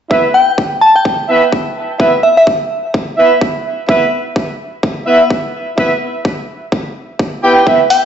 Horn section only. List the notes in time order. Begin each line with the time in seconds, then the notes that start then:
0.11 B3 E4 B4 E5
1.29 B3 E4 B4 E5
2.00 B3 E4 B4 E5
3.18 B3 E4 B4 E5
3.89 B3 E4 B4 E5
5.07 B3 E4 B4 E5
5.78 B3 E4 B4 E5
7.43 B3 E4 G4 B4 G5
7.67 B3 E4 B4 E5